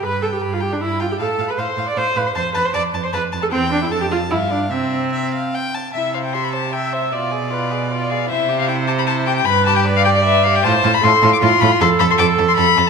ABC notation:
X:1
M:3/4
L:1/16
Q:1/4=154
K:C
V:1 name="Violin"
b2 a g2 f g d e2 f g | a3 b c'3 d' c'2 b c' | c'2 b c' d'3 c' b3 a | c2 d e a g f2 e2 d2 |
c8 z4 | e2 f g c' b a2 g2 e2 | d8- d2 f2 | e3 f g2 a b a2 g g |
b2 a g2 f g d e2 f g | a3 b c'3 d' c'2 b c' | c'2 b c' d'3 c' b3 z |]
V:2 name="Violin"
b2 g2 b2 g2 b2 g2 | f2 f2 f2 f2 f2 f2 | a2 a2 a2 a2 a2 a2 | g4 a4 f4 |
e4 e2 f2 g2 a2 | e2 c2 e2 c2 e2 c2 | F2 ^G2 F2 G2 F2 G2 | E2 G2 E2 G2 E2 G2 |
B2 G2 B2 G2 B2 G2 | F2 F2 F2 F2 F2 F2 | A2 A2 A2 A2 A2 A2 |]
V:3 name="Viola"
B2 A G2 F G D E2 F G | A3 B c3 d c2 B c | c2 B c d3 c B3 A | C2 D E A G F2 E2 D2 |
C8 z4 | E4 G4 e4 | d4 B4 d4 | c12 |
B4 d8 | c4 A4 F4 | A12 |]
V:4 name="Cello" clef=bass
G,,4 G,,4 G,,4 | A,,2 A,,2 A,,2 A,,2 A,,2 A,,2 | F,,2 F,,2 F,,2 F,,2 F,,2 F,,2 | E,,4 F,,4 G,,4 |
C,8- C,2 z2 | C,12 | B,,12 | C,12 |
G,,12 | A,,2 A,,2 A,,2 A,,2 A,,2 A,,2 | F,,2 F,,2 F,,2 F,,2 F,,2 F,,2 |]